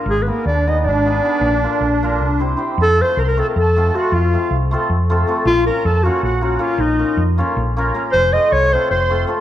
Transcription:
0.06 G#1 G#3
0.10 G#4
0.21 B3 B4
0.26 A#3 B3 D#4 G#4 A#4 B4
0.46 D#2 D4 D5
0.67 B3 D#4 G#4 B4 D#5
0.79 D#4 D#5
0.85 G#1 D4 D5
1.05 B3 D#4 G#4 B4
1.24 B3 D#4 G#4 B4
1.41 A#1
1.63 A#3 D4 F4 A#4
1.81 A#1
2.02 A#3 D4 F4 A#4
2.20 C2
2.39 C4 E4 G4 C5
2.57 C4 E4 G4 C5
2.78 F2 A5
2.82 A4
2.97 A3 C4 F4 A4
3.01 C5 C6
3.17 C2 A#4 C5 A#5
3.23 C6
3.28 A#4
3.32 A#5
3.37 A3 C4 F4 A4
3.42 A5
3.50 A#4
3.55 F2 A4 A#5
3.61 A5
3.76 A3 C4 F4 A4
3.94 A3 C4 F4 F#4 A4 F#5
4.12 F2 F4 F5
4.33 A3 C4 F4 A4
4.51 C2
4.71 A3 C4 F4 A4
4.90 F2
5.10 A3 C4 F4 A4
5.27 A3 C4 F4 A4
5.45 A#1 F4 F5
5.66 A#3 C#4 F4 A#4 A#5
5.85 F2 A4 A5
6.03 A#3 C#4 F4 F#4 A#4 F#5
6.23 A#1 F#4 F#5
6.41 A#3 C#4 F4 F#4 A#4 F#5
6.59 A#3 C#4 F4 A#4 F5
6.78 A#1 D#4 D#5
6.98 A#3 C#4 F4 A#4
7.17 F2
7.38 A#3 C#4 F4 A#4
7.57 A#1
7.77 A#3 C#4 F4 A#4
7.94 A#3 C#4 F4 A#4
8.10 F1 C5 C6
8.33 A3 C4 F4 A4 D#5 D#6
8.50 C2 C#5 C#6
8.71 A3 C4 F4 A4 C5 C6
8.90 F1 C5 C6
9.10 A3 C4 F4 A4
9.27 A3 C4 F4 A4

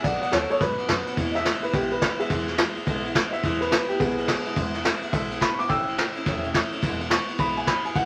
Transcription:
0.03 B1 B2 F#3 B3 D#4 F#4 D5 F#5, kick, ride
0.21 B3 D#4 F#4 D5 F#5, muted upright bass stroke, ride
0.31 D#2 F#3 B3 A4 C#5, snare, ride
0.50 B3 D#4 F#4 A4 C#5, muted upright bass stroke, ride
0.61 G#2 B2 F#3 B3 D#4 F#4 B4, kick, snare, ride
0.78 B3 D#4 F#4, muted upright bass stroke, ride
0.88 F#2 F#3 D#4 F#4, kick, snare, ride
1.06 B3 D#4 F#4, muted upright bass stroke, ride
1.17 E2 B2 E3 G#3 B3 E4, kick, ride
1.31 D#5
1.35 E3 G#3 B3 E4 E5, snare, ride
1.45 E3 G#3 B3 E4, snare, ride
1.63 E3 G#3 B3 E4 B4, muted upright bass stroke, ride
1.73 B1 E2 B2 E3 G#3 B3 E4 G4, kick, snare, ride
1.91 E3 G#3 B3 E4 B4, ride
2.01 E3 G#3 B4, kick, snare, ride
2.19 E3 G#3 B3 E4 G#4 E5, muted upright bass stroke, ride
2.30 E2 B2 E3 G#3 B3 E4, kick, snare, ride
2.47 E3 G#3 B3 E4, snare, ride
2.57 E3 G#3 B3 E4, snare, ride
2.75 E3 G#3 B3 E4, muted upright bass stroke, ride
2.86 B1 E2 B2 E3 G#3 B3 E4, kick, ride
3.03 E3 G#3 B3 E4, ride
3.15 E3 G#3 B3 E4, kick, snare, ride
3.28 D#5
3.32 E3 G#3 B3 E4 E5, muted upright bass stroke, ride
3.43 E2 B2 E3 G#3 B3 E4, kick, ride
3.61 E3 G#3 B3 E4 B4, snare, ride
3.71 E3 G#3 B3 E4 B4, snare, ride
3.88 E3 G#3 B3 E4 G4, muted upright bass stroke, ride
4.00 B1 E2 B2 E3 G#3 B3 E4 G#4, kick, ride
4.17 E3 G#3 B3 E4, ride
4.27 E3 G#3 B3 E4, kick, snare, ride
4.45 E3 G#3 B3 E4, muted upright bass stroke, ride
4.56 E2 B2 E3 G#3 B3 E4, kick, ride
4.73 E3 G#3 B3 E4, snare, ride
4.84 E3 G#3 B3 E4, snare, ride
5.01 E3 G#3 B3 E4, muted upright bass stroke, ride
5.12 B1 E2 B2 E3 G#3 B3 E4 E5, kick, snare, ride
5.30 E3 G#3 B3 E4, ride
5.40 E3 G#3 B3 E4 B5, kick, snare, ride
5.54 B3 E4 C#6
5.59 E3 G#3 D6, muted upright bass stroke, ride
5.69 A1 A2 E3 A3 C#4 E4 G5 E6, kick, snare, ride
5.87 A3 C#4 E4, ride
5.97 E3 A3 C#4, snare, ride
6.16 A3 C#4 E4, muted upright bass stroke, ride
6.26 E1 A2 E3 A3 C#4 E4, kick, snare, ride
6.43 A3 C#4 E4, ride
6.54 E3 A3 C#4 E4, kick, snare, ride
6.71 A3 C#4 E4, muted upright bass stroke, ride
6.82 E1 E2 B2 E3 G#3 B3 E4, kick, snare, ride
6.99 E3 G#3 B3 E4, ride
7.10 E3 G#3 B3 C#6, snare, ride
7.27 E3 G#3 B3 E4, muted upright bass stroke, ride
7.38 B1 E2 B2 E3 G#3 B3 E4 B5, kick, ride
7.55 E3 G#3 B3 E4 G#5, ride
7.66 E3 E4 B5, kick, snare, ride
7.84 E3 G#3 B3 E4 G#5, muted upright bass stroke, ride
7.95 E1 E2 B2 E3 G#3 B3 E4 F#5, kick, ride

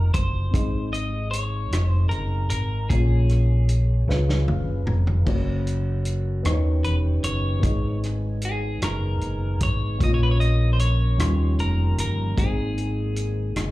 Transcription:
Already playing: F1 A#2 A#3 D#4 F#4 A#4 D#5
0.14 F#1 C5, kick, closed hi-hat
0.51 G#1 G#2 C3 D#4 G#4, kick, closed hi-hat
0.55 D#5
0.93 D#5, closed hi-hat
1.31 C#5, closed hi-hat
1.71 F1, cross-stick, closed hi-hat
1.88 C5
2.09 F#1 A#4, closed hi-hat
2.50 G#1 A#4, closed hi-hat
2.90 A#1 A#2 A#3 C#4 F4 G#4 C#5, kick, closed hi-hat
3.29 cross-stick, closed hi-hat
3.69 closed hi-hat
4.07 C#2 C#3 G#3 C#4 F4 B4, snare
4.29 snare
4.47 F#1 F5, high tom
4.86 F1 A#5, mid tom
5.07 floor tom
5.25 F#1 C#3 F#3 A#3 C#4 F#4 C#5, kick, crash
5.67 closed hi-hat
6.05 closed hi-hat
6.43 D#2 D#3 B3 C#4 D#4 G4 C5, cross-stick, closed hi-hat
6.52 C#5
6.84 E1 B4, closed hi-hat
7.23 F#1 C#5, closed hi-hat
7.60 G#1 G#2 G#3 B3 D#4 G#4, kick, closed hi-hat
7.65 D#5
8.03 cross-stick, closed hi-hat
8.42 G#4, closed hi-hat
8.82 F#1 A#4, cross-stick, closed hi-hat
9.20 F#1, closed hi-hat
9.60 G#1 C#5, kick, closed hi-hat
9.99 A#1 A#2 F3 A#3 C#4 F4 A#4 C#5, kick, closed hi-hat
10.04 D#5
10.14 C#5
10.23 B4
10.31 C#5
10.40 D#5, closed hi-hat
10.73 C5
10.79 C#5, closed hi-hat
11.18 D#2 D#3 G3 A#3 C#4 F4 G4 C6, cross-stick, closed hi-hat
11.58 F1 A#4, closed hi-hat
11.98 G1 A#4, closed hi-hat
12.36 G#1 G#2 D#3 G#3 C4 D#4 G#4, kick, closed hi-hat
12.40 C5
12.78 closed hi-hat
13.16 closed hi-hat
13.56 F#1, cross-stick, closed hi-hat

